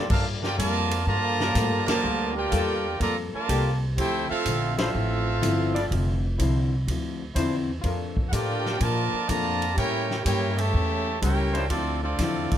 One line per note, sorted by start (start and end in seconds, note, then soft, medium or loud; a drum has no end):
0.09 0.57 G2 medium
0.09 0.45 G3 medium
0.09 0.24 A#3 medium
0.09 0.45 A#3 medium
0.09 0.24 D4 medium
0.09 0.25 D4 medium
0.09 0.24 F4 medium
0.09 0.45 F4 medium
0.09 0.25 A4 medium
0.09 0.46 A4 medium
0.09 0.25 A#4 medium
0.09 0.25 F5 loud
0.09 kick medium
0.09 crash medium
0.41 0.55 A#3 medium
0.41 0.57 D4 medium
0.41 0.57 F4 medium
0.41 0.57 G4 medium
0.41 0.57 A#4 medium
0.41 0.57 D5 medium
0.41 0.58 G5 loud
0.41 snare medium
0.56 1.06 F2 loud
0.56 1.02 D3 medium
0.56 1.03 F3 medium
0.56 0.93 G3 medium
0.56 1.02 A#3 medium
0.56 0.93 A#3 medium
0.56 1.03 F4 loud
0.56 0.93 F4 medium
0.56 0.93 A4 medium
0.56 1.03 A#4 medium
0.56 1.03 D5 loud
0.56 1.03 A5 loud
0.56 kick soft
0.56 hi-hat pedal medium
0.56 ride medium
0.91 ride medium
1.04 1.54 G2 medium
1.04 1.83 D3 loud
1.04 1.83 F3 loud
1.04 1.42 G3 soft
1.04 1.83 A#3 medium
1.04 1.84 F4 loud
1.04 1.84 D5 loud
1.04 1.84 A5 medium
1.04 1.84 A#5 loud
1.04 kick soft
1.08 1.42 A#3 medium
1.08 1.42 F4 soft
1.08 1.42 A4 medium
1.40 2.01 G3 loud
1.40 2.01 A#3 loud
1.40 2.02 F4 loud
1.40 2.01 A#4 loud
1.40 snare medium
1.55 1.71 A2 loud
1.55 1.90 G3 medium
1.55 1.90 A#3 medium
1.55 1.91 F4 medium
1.55 1.90 A4 medium
1.55 kick soft
1.55 snare soft
1.55 hi-hat pedal medium
1.55 ride medium
1.71 1.86 G2 medium
1.85 2.02 F2 medium
1.85 2.32 D3 loud
1.85 2.32 F3 loud
1.85 2.31 A#3 loud
1.85 2.32 F4 medium
1.85 2.32 A#4 medium
1.85 2.32 D5 loud
1.85 2.32 A5 loud
1.85 snare loud
1.85 ride medium
2.03 2.50 D2 medium
2.03 2.38 G3 medium
2.03 2.39 A#3 soft
2.03 2.39 F4 soft
2.03 2.39 A4 medium
2.33 2.98 A#3 loud
2.33 2.99 D4 loud
2.33 3.00 F4 loud
2.33 2.99 G4 medium
2.33 3.00 A#4 medium
2.33 3.00 D5 medium
2.33 3.01 G5 loud
2.52 2.99 E2 loud
2.52 2.86 G3 medium
2.52 2.74 G3 medium
2.52 2.74 A#3 medium
2.52 2.86 A#3 medium
2.52 2.74 F4 medium
2.52 2.87 F4 medium
2.52 2.74 A4 loud
2.52 2.87 A4 medium
2.52 kick soft
2.52 hi-hat pedal medium
2.52 ride medium
2.99 3.31 F2 medium
2.99 3.14 D3 medium
2.99 3.14 F3 medium
2.99 3.35 G3 medium
2.99 3.14 A#3 medium
2.99 3.35 A#3 soft
2.99 3.35 F4 medium
2.99 3.16 F4 medium
2.99 3.16 A4 medium
2.99 3.36 A4 medium
2.99 3.17 D5 medium
2.99 3.16 A#5 loud
2.99 kick soft
2.99 ride medium
3.32 3.74 D3 medium
3.32 3.74 F3 medium
3.32 3.75 A#3 medium
3.32 3.75 F4 medium
3.32 3.75 A#4 medium
3.32 3.76 D5 medium
3.32 3.75 A5 loud
3.32 muted upright bass stroke soft
3.48 3.96 C2 loud
3.48 3.71 G3 loud
3.48 3.84 G3 medium
3.48 3.71 A#3 medium
3.48 3.84 A#3 medium
3.48 3.71 F4 loud
3.48 3.84 F4 medium
3.48 3.71 G4 loud
3.48 3.84 A4 medium
3.48 kick soft
3.48 hi-hat pedal medium
3.48 ride medium
3.97 4.28 D2 medium
3.97 4.32 D3 medium
3.97 4.32 F3 medium
3.97 4.33 C4 medium
3.97 4.28 E4 loud
3.97 4.33 E4 medium
3.97 4.28 G4 medium
3.97 4.28 A4 medium
3.97 4.28 C5 loud
3.97 4.28 G5 loud
3.97 kick soft
3.97 ride medium
4.29 4.75 A3 medium
4.29 4.75 C4 medium
4.29 4.75 C4 loud
4.29 4.75 F4 loud
4.29 4.75 A4 loud
4.29 4.74 E5 loud
4.29 4.75 F5 loud
4.29 muted upright bass stroke soft
4.46 4.92 A#1 loud
4.46 4.80 D3 medium
4.46 4.81 F3 medium
4.46 4.81 C4 medium
4.46 4.81 E4 medium
4.46 kick soft
4.46 hi-hat pedal medium
4.46 ride medium
4.76 4.89 F3 loud
4.76 6.19 A3 medium
4.76 6.18 C4 medium
4.76 4.89 D4 medium
4.76 4.89 E4 loud
4.76 6.19 F4 medium
4.76 6.19 A4 medium
4.76 4.89 C5 loud
4.76 6.18 E5 medium
4.76 6.19 F5 loud
4.76 snare loud
4.76 ride medium
4.94 5.41 A1 loud
4.94 5.28 D3 soft
4.94 5.29 F3 medium
4.94 5.29 C4 medium
4.94 5.30 E4 medium
5.42 5.89 G1 loud
5.42 5.76 D3 medium
5.42 5.77 F3 medium
5.42 5.77 C4 medium
5.42 5.77 E4 medium
5.42 kick soft
5.42 hi-hat pedal medium
5.42 ride medium
5.74 5.85 F3 loud
5.74 5.85 D4 loud
5.74 5.85 E4 loud
5.74 5.85 D5 loud
5.74 ride medium
5.91 6.38 F1 medium
5.91 6.25 D3 medium
5.91 6.26 F3 medium
5.91 6.26 C4 medium
5.91 6.26 E4 medium
5.91 kick soft
5.91 ride medium
6.38 6.86 C2 loud
6.38 6.73 D3 medium
6.38 6.61 F3 medium
6.38 6.74 F3 medium
6.38 6.74 C4 medium
6.38 6.61 D4 medium
6.38 6.61 E4 medium
6.38 6.74 E4 medium
6.38 6.61 C5 medium
6.38 kick soft
6.38 hi-hat pedal medium
6.38 ride medium
6.88 7.34 D2 medium
6.88 7.23 D3 medium
6.88 7.23 F3 medium
6.88 7.23 C4 medium
6.88 7.24 E4 medium
6.88 kick soft
6.88 ride medium
7.34 7.83 E2 loud
7.34 7.70 D3 medium
7.34 7.57 F3 medium
7.34 7.71 F3 medium
7.34 7.71 C4 medium
7.34 7.57 D4 medium
7.34 7.57 E4 medium
7.34 7.71 E4 medium
7.34 7.57 C5 loud
7.34 kick soft
7.34 hi-hat pedal medium
7.34 ride medium
7.82 8.31 F2 medium
7.82 8.19 A#2 medium
7.82 9.19 F3 loud
7.82 8.19 F3 medium
7.82 9.19 D4 medium
7.82 9.19 F4 loud
7.82 9.19 A#4 medium
7.82 kick soft
7.82 ride medium
7.86 8.19 A3 medium
7.86 8.20 D4 medium
8.17 kick medium
8.29 8.79 A2 medium
8.29 8.67 A#2 medium
8.29 8.78 F3 loud
8.29 8.81 D4 medium
8.29 8.79 F4 medium
8.29 8.80 G4 medium
8.29 8.79 A#4 loud
8.29 8.80 D5 medium
8.29 8.33 F#5 medium
8.29 8.81 G5 loud
8.29 kick soft
8.29 hi-hat pedal medium
8.29 ride medium
8.33 8.67 F3 medium
8.33 8.67 A3 medium
8.33 8.68 D4 medium
8.66 snare medium
8.79 9.14 A#2 soft
8.79 9.11 A#2 medium
8.79 9.25 D3 medium
8.79 9.25 F3 medium
8.79 9.15 F3 soft
8.79 9.15 A3 medium
8.79 9.25 A#3 medium
8.79 9.16 D4 medium
8.79 9.28 F4 medium
8.79 9.29 A#4 medium
8.79 9.28 D5 medium
8.79 9.28 A5 loud
8.79 kick soft
8.79 ride medium
9.13 muted upright bass stroke soft
9.26 9.76 F2 loud
9.26 9.64 A#2 medium
9.26 9.76 D3 loud
9.26 9.76 F3 loud
9.26 9.64 F3 medium
9.26 9.76 A#3 medium
9.26 9.78 F4 medium
9.26 9.78 D5 loud
9.26 9.78 A5 loud
9.26 9.78 A#5 loud
9.26 kick soft
9.26 hi-hat pedal medium
9.26 ride medium
9.31 9.64 A3 medium
9.31 9.65 D4 medium
9.62 ride medium
9.74 10.24 A2 medium
9.74 10.21 C#4 medium
9.74 10.21 E4 medium
9.74 10.22 E4 medium
9.74 10.21 G4 medium
9.74 10.22 A#4 loud
9.74 10.22 C#5 medium
9.74 10.22 G5 loud
9.74 kick soft
9.74 ride medium
9.78 10.12 A2 medium
9.78 10.13 G3 soft
9.78 10.13 A#3 medium
9.78 10.14 C#4 medium
10.11 snare medium
10.22 10.73 G2 loud
10.22 10.60 A2 medium
10.22 10.55 C#4 medium
10.22 10.55 E4 medium
10.22 10.56 E4 medium
10.22 10.55 G4 medium
10.22 10.56 A#4 medium
10.22 10.56 C#5 loud
10.22 10.56 G5 loud
10.22 kick soft
10.22 hi-hat pedal medium
10.22 ride medium
10.27 10.61 G3 medium
10.27 10.61 A#3 medium
10.27 10.61 C#4 medium
10.55 11.21 C#3 medium
10.55 11.21 E3 medium
10.55 11.21 A3 loud
10.55 11.23 G4 loud
10.55 11.21 C#5 medium
10.55 11.22 E5 loud
10.55 11.22 A5 loud
10.55 ride medium
10.74 11.21 E2 medium
10.74 11.09 A2 medium
10.74 11.09 G3 soft
10.74 11.10 A#3 medium
10.74 11.10 C#4 medium
10.74 kick soft
11.20 11.69 C#2 medium
11.20 11.57 A2 medium
11.20 11.57 G3 medium
11.20 11.58 A#3 medium
11.20 11.67 C#4 medium
11.20 11.58 C#4 medium
11.20 11.66 E4 medium
11.20 11.67 E4 medium
11.20 11.66 G4 medium
11.20 11.67 A#4 medium
11.20 11.68 C#5 medium
11.20 11.67 G5 medium
11.20 kick soft
11.20 hi-hat pedal medium
11.20 ride medium
11.53 11.64 F3 loud
11.53 11.65 D4 loud
11.53 11.65 E4 loud
11.53 11.64 C5 loud
11.53 ride medium
11.69 12.18 D2 loud
11.69 12.06 D3 medium
11.69 12.01 F3 medium
11.69 12.06 F3 medium
11.69 12.01 A3 medium
11.69 12.01 C4 medium
11.69 12.06 C4 medium
11.69 12.01 D4 medium
11.69 12.01 F4 medium
11.69 12.01 A4 medium
11.69 12.01 D5 loud
11.69 kick soft
11.69 ride medium
11.74 12.07 E4 medium
12.02 12.58 F3 medium
12.02 12.58 A3 medium
12.02 12.58 C4 medium
12.02 12.58 D4 medium
12.02 12.58 F4 medium
12.02 12.58 A4 medium
12.02 12.58 D5 medium
12.19 12.50 E2 loud
12.19 12.54 D3 medium
12.19 12.55 F3 medium
12.19 12.55 C4 medium
12.19 12.55 E4 medium
12.19 kick soft
12.19 snare soft
12.19 hi-hat pedal medium
12.19 ride medium
12.52 muted upright bass stroke soft
12.52 kick medium
12.52 ride medium